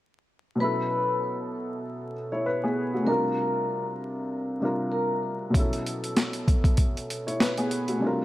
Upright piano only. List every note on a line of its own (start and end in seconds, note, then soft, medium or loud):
0.55 3.01 B2 medium
0.55 3.02 F#3 medium
0.60 2.11 C#4 medium
0.60 2.12 E4 medium
0.64 2.14 A4 medium
2.32 2.45 E4 medium
2.32 2.45 C#5 medium
2.46 2.62 B4 medium
2.64 2.93 B3 medium
2.64 2.92 G#4 medium
2.94 3.23 A3 medium
2.94 3.23 F#4 medium
3.03 4.56 C3 medium
3.03 4.58 G3 medium
3.07 4.59 D4 medium
3.07 4.60 F4 medium
3.12 4.61 A#4 medium
4.60 5.54 C3 medium
4.60 5.54 G3 soft
4.60 5.55 D4 medium
4.60 5.56 F4 medium
4.65 5.56 A#4 medium
5.50 7.96 B2 medium
5.50 7.97 F#3 medium
5.54 7.06 C#4 medium
5.54 7.07 E4 medium
5.59 7.08 A4 medium
7.27 7.40 E4 medium
7.27 7.40 C#5 medium
7.41 7.57 B4 medium
7.58 7.87 B3 medium
7.58 7.87 G#4 medium
7.88 8.18 A3 medium
7.88 8.18 F#4 medium
7.98 8.25 C3 medium
7.98 8.25 G3 medium
8.02 8.25 D4 medium
8.02 8.25 F4 medium
8.06 8.25 A#4 medium